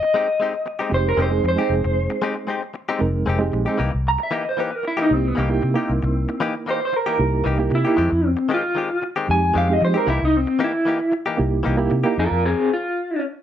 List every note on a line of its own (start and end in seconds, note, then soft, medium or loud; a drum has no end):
0.00 0.90 D#5 medium
0.00 muted clean electric guitar stroke soft
0.14 0.28 G#3 medium
0.14 0.29 C4 medium
0.14 0.28 D#4 medium
0.14 0.27 G4 medium
0.28 muted clean electric guitar stroke soft
0.40 0.54 G#3 medium
0.40 0.54 C4 medium
0.40 0.53 D#4 medium
0.40 0.53 G4 medium
0.54 muted clean electric guitar stroke soft
0.66 muted clean electric guitar stroke soft
0.79 0.90 G#3 medium
0.79 0.91 C4 medium
0.79 0.91 D#4 medium
0.79 0.92 G4 medium
0.89 1.14 F1 medium
0.89 1.28 G#3 medium
0.89 1.29 C4 medium
0.89 1.29 D#4 medium
0.89 1.29 G4 medium
0.89 muted clean electric guitar stroke soft
0.94 1.07 C5 medium
1.09 1.19 A#4 medium
1.17 1.40 F1 medium
1.17 1.32 G#3 medium
1.17 1.32 C4 medium
1.17 1.31 D#4 medium
1.17 1.30 G4 medium
1.22 1.46 C5 medium
1.31 1.55 G#3 medium
1.31 1.56 C4 medium
1.31 1.56 D#4 medium
1.31 1.57 G#4 medium
1.31 muted clean electric guitar stroke soft
1.43 1.56 F2 medium
1.43 muted clean electric guitar stroke soft
1.49 2.99 C5 medium
1.56 2.55 G#3 medium
1.56 2.55 C4 medium
1.56 2.56 D#4 medium
1.56 1.74 D#4 soft
1.56 1.73 G4 medium
1.56 2.56 G#4 medium
1.61 1.75 C4 soft
1.70 1.82 F1 medium
1.84 2.07 F1 medium
1.84 muted clean electric guitar stroke soft
2.10 muted clean electric guitar stroke soft
2.22 2.36 G#3 medium
2.22 2.36 C4 medium
2.22 2.35 D#4 medium
2.22 2.35 G4 medium
2.36 muted clean electric guitar stroke soft
2.47 2.62 G#3 medium
2.47 2.62 C4 medium
2.47 2.62 D#4 medium
2.47 2.61 G4 medium
2.62 muted clean electric guitar stroke soft
2.74 muted clean electric guitar stroke soft
2.89 2.99 G#3 medium
2.89 3.00 C4 medium
2.89 3.00 D#4 medium
2.89 3.01 G4 medium
2.99 3.23 F1 medium
2.99 3.37 G#3 medium
2.99 3.38 C4 medium
2.99 3.38 D#4 medium
2.99 3.38 A#4 medium
2.99 muted clean electric guitar stroke soft
3.26 3.49 F1 medium
3.26 3.41 G#3 medium
3.26 3.41 C4 medium
3.26 3.40 D#4 medium
3.26 3.39 G4 medium
3.39 3.64 G#3 medium
3.39 3.65 C4 medium
3.39 3.65 D#4 medium
3.39 3.65 G4 medium
3.52 3.65 A#1 medium
3.52 muted clean electric guitar stroke soft
3.65 3.78 G#3 medium
3.65 3.79 C4 medium
3.65 3.78 C4 soft
3.65 3.79 D#4 medium
3.65 3.78 D#4 medium
3.65 3.78 G4 medium
3.65 3.79 G#4 medium
3.78 3.91 C2 medium
3.78 3.92 E3 medium
3.78 3.92 A#3 medium
3.78 3.91 D#4 medium
3.78 3.91 G4 medium
3.92 4.16 C2 medium
3.92 muted clean electric guitar stroke soft
4.08 4.21 A#5 medium
4.19 muted clean electric guitar stroke soft
4.23 4.35 E5 medium
4.31 4.45 E3 medium
4.31 4.45 A#3 medium
4.31 4.44 D#4 medium
4.31 4.43 G4 medium
4.31 4.47 D#5 medium
4.45 muted clean electric guitar stroke soft
4.49 4.60 C5 medium
4.57 4.71 E3 medium
4.57 4.72 A#3 medium
4.57 4.71 D#4 medium
4.57 4.71 G4 medium
4.57 4.75 B4 medium
4.72 4.85 A#4 medium
4.72 muted clean electric guitar stroke soft
4.83 muted clean electric guitar stroke soft
4.88 4.99 E4 medium
4.97 5.08 E3 medium
4.97 5.09 A#3 medium
4.97 5.09 D#4 medium
4.97 5.09 G4 medium
5.02 5.13 D#4 medium
5.09 5.32 C2 medium
5.09 5.47 A#3 medium
5.09 5.47 D#4 medium
5.09 5.47 E4 medium
5.09 5.48 G4 medium
5.13 5.28 C4 medium
5.28 5.40 B3 medium
5.35 5.59 C2 medium
5.35 5.50 E3 soft
5.35 5.50 A#3 medium
5.35 5.49 D#4 medium
5.35 5.49 G4 medium
5.40 6.39 C4 medium
5.49 5.73 A#3 medium
5.49 5.74 D#4 medium
5.49 5.74 E4 medium
5.49 5.75 G4 medium
5.49 muted clean electric guitar stroke soft
5.62 5.75 C3 medium
5.62 muted clean electric guitar stroke soft
5.74 6.73 A#3 medium
5.74 6.73 D#4 medium
5.74 5.91 D#4 soft
5.74 6.74 E4 medium
5.74 5.91 G4 soft
5.74 6.74 A#4 medium
5.79 5.92 A#3 soft
5.90 6.01 C2 medium
6.03 6.25 C2 medium
6.03 muted clean electric guitar stroke soft
6.29 muted clean electric guitar stroke soft
6.40 6.55 E3 medium
6.40 6.55 A#3 medium
6.40 6.55 D#4 medium
6.40 6.54 G4 medium
6.55 muted clean electric guitar stroke soft
6.66 6.81 E3 medium
6.66 6.81 A#3 medium
6.66 6.81 D#4 medium
6.66 6.80 G4 medium
6.71 6.82 C5 medium
6.81 muted clean electric guitar stroke soft
6.85 6.96 C5 medium
6.93 7.71 A#4 medium
6.93 muted clean electric guitar stroke soft
7.06 7.17 E3 medium
7.06 7.17 A#3 medium
7.06 7.18 D#4 medium
7.06 7.19 G4 medium
7.18 7.41 C2 medium
7.18 7.57 A#3 medium
7.18 7.57 D#4 medium
7.18 7.57 E4 medium
7.18 7.57 G4 medium
7.18 muted clean electric guitar stroke soft
7.44 7.68 C2 medium
7.44 7.59 E3 medium
7.44 7.59 A#3 medium
7.44 7.58 D#4 medium
7.44 7.58 G4 medium
7.58 7.83 A#3 medium
7.58 7.83 D#4 medium
7.58 7.84 E4 medium
7.58 7.84 G4 medium
7.58 muted clean electric guitar stroke soft
7.70 7.83 C3 medium
7.70 muted clean electric guitar stroke soft
7.75 8.26 E4 medium
7.84 7.97 A#3 medium
7.84 7.96 A#3 soft
7.84 7.97 D#4 medium
7.84 7.98 D#4 soft
7.84 7.97 E4 medium
7.84 7.97 G4 soft
7.84 7.98 G4 medium
7.96 8.10 F2 medium
7.96 8.11 D#3 medium
7.96 8.11 G#3 medium
7.96 8.11 C4 medium
7.96 8.10 G4 medium
8.11 8.34 F2 medium
8.11 muted clean electric guitar stroke soft
8.26 8.50 C4 medium
8.37 muted clean electric guitar stroke soft
8.49 8.64 D#3 medium
8.49 8.64 G#3 medium
8.49 8.63 C4 medium
8.49 8.62 G4 medium
8.54 9.03 F4 medium
8.63 muted clean electric guitar stroke soft
8.75 8.90 D#3 medium
8.75 8.90 G#3 medium
8.75 8.90 C4 medium
8.75 8.89 G4 medium
9.02 muted clean electric guitar stroke soft
9.16 9.27 D#3 medium
9.16 9.27 G#3 medium
9.16 9.28 C4 medium
9.16 9.28 G4 medium
9.28 9.51 F2 medium
9.28 9.66 G#3 medium
9.28 9.66 C4 medium
9.28 9.67 D#4 medium
9.28 9.67 G4 medium
9.28 9.55 G#5 medium
9.28 muted clean electric guitar stroke soft
9.54 9.77 F2 medium
9.54 9.68 D#3 medium
9.54 9.69 G#3 medium
9.54 9.68 C4 medium
9.54 9.68 G4 medium
9.54 9.73 F5 medium
9.68 9.93 G#3 medium
9.68 9.93 C4 medium
9.68 9.94 D#4 medium
9.68 9.94 G4 medium
9.68 muted clean electric guitar stroke soft
9.73 9.83 D#5 medium
9.81 9.93 F3 medium
9.81 9.97 C5 medium
9.81 muted clean electric guitar stroke soft
9.94 10.07 G#3 medium
9.94 10.07 G#3 soft
9.94 10.07 C4 medium
9.94 10.07 D#4 medium
9.94 10.07 G4 soft
9.94 10.07 G4 medium
9.94 10.08 A#4 loud
10.06 10.19 C2 medium
10.06 10.21 E3 medium
10.06 10.21 A#3 medium
10.06 10.20 D#4 medium
10.06 10.22 E4 medium
10.06 10.19 G4 medium
10.20 10.44 C2 medium
10.20 muted clean electric guitar stroke soft
10.25 10.37 D#4 medium
10.37 10.61 C4 medium
10.47 muted clean electric guitar stroke soft
10.59 10.73 E3 medium
10.59 10.73 A#3 medium
10.59 10.73 D#4 medium
10.59 10.72 G4 medium
10.64 11.13 E4 medium
10.73 muted clean electric guitar stroke soft
10.85 11.00 E3 medium
10.85 11.00 A#3 medium
10.85 10.99 D#4 medium
10.85 10.98 G4 medium
10.99 muted clean electric guitar stroke soft
11.12 muted clean electric guitar stroke soft
11.26 11.37 E3 medium
11.26 11.38 A#3 medium
11.26 11.39 D#4 medium
11.26 11.38 G4 medium
11.37 11.61 C2 medium
11.37 11.76 A#3 medium
11.37 11.76 D#4 medium
11.37 11.76 E4 medium
11.37 11.76 G4 medium
11.37 muted clean electric guitar stroke soft
11.63 11.88 C2 medium
11.63 11.78 E3 medium
11.63 11.78 A#3 medium
11.63 11.77 D#4 medium
11.63 11.76 G4 medium
11.77 12.03 A#3 medium
11.77 12.03 D#4 medium
11.77 12.03 E4 medium
11.77 12.03 G4 loud
11.77 muted clean electric guitar stroke soft
11.90 12.03 C3 medium
11.90 muted clean electric guitar stroke soft
12.04 12.16 A#3 medium
12.04 12.18 A#3 soft
12.04 12.17 D#4 medium
12.04 12.17 D#4 soft
12.04 12.17 E4 medium
12.04 12.16 G4 medium
12.04 12.17 G4 medium
12.18 12.29 F2 medium
12.18 12.44 F4 medium
12.18 12.44 A#4 medium
12.31 12.53 F2 medium
12.45 12.69 C4 medium
12.45 12.70 G#4 medium
12.73 13.22 F4 medium